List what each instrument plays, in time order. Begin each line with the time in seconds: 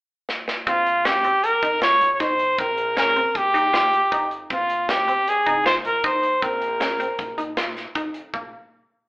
0.29 snare
0.48 snare
0.67 upright bass A#1, synth arpeggio sound C4, trumpet F4, kick, closed hi-hat
0.87 closed hi-hat
1.05 synth arpeggio sound C#4, trumpet G4, snare, closed hi-hat
1.24 synth arpeggio sound C4, closed hi-hat
1.44 trumpet A#4, closed hi-hat
1.63 upright bass F2, synth arpeggio sound D#4, kick, closed hi-hat
1.82 synth arpeggio sound F4, trumpet C#5, snare, closed hi-hat
2.01 upright bass A#1, closed hi-hat
2.13 trumpet C#5
2.20 upright bass G1, synth arpeggio sound D#4, trumpet C5, kick, snare, closed hi-hat
2.39 closed hi-hat
2.58 upright bass A#1, synth arpeggio sound C4, trumpet A#4, kick, closed hi-hat
2.78 closed hi-hat
2.96 synth arpeggio sound C#4, trumpet A#4, snare, closed hi-hat
3.16 synth arpeggio sound C4, closed hi-hat
3.35 upright bass A#1, trumpet G4, kick, closed hi-hat
3.54 synth arpeggio sound D#4, closed hi-hat
3.73 synth arpeggio sound F4, snare, closed hi-hat
3.93 closed hi-hat
4.12 upright bass F2, synth arpeggio sound D#4, kick, closed hi-hat
4.31 closed hi-hat
4.50 upright bass A#1, synth arpeggio sound C4, trumpet F4, kick, closed hi-hat
4.70 closed hi-hat
4.89 synth arpeggio sound C#4, trumpet G4, snare, closed hi-hat
5.08 synth arpeggio sound C4, closed hi-hat
5.28 trumpet G#4, closed hi-hat
5.46 upright bass C2, synth arpeggio sound D#4, kick, closed hi-hat
5.66 synth arpeggio sound F4, trumpet C5, snare, closed hi-hat
5.85 upright bass A#1, trumpet A#4, closed hi-hat
6.04 upright bass D#2, synth arpeggio sound D#4, trumpet C5, kick, closed hi-hat
6.23 closed hi-hat
6.42 upright bass A#1, synth arpeggio sound C4, trumpet A#4, kick, closed hi-hat
6.62 closed hi-hat
6.80 synth arpeggio sound C#4, snare, closed hi-hat
7.00 synth arpeggio sound C4, closed hi-hat
7.19 upright bass A#1, kick, closed hi-hat
7.38 synth arpeggio sound D#4, closed hi-hat
7.57 synth arpeggio sound F4, snare, closed hi-hat
7.77 snare, closed hi-hat
7.95 upright bass F2, synth arpeggio sound D#4, kick, closed hi-hat
8.14 closed hi-hat
8.34 upright bass A#1, synth arpeggio sound A#3, kick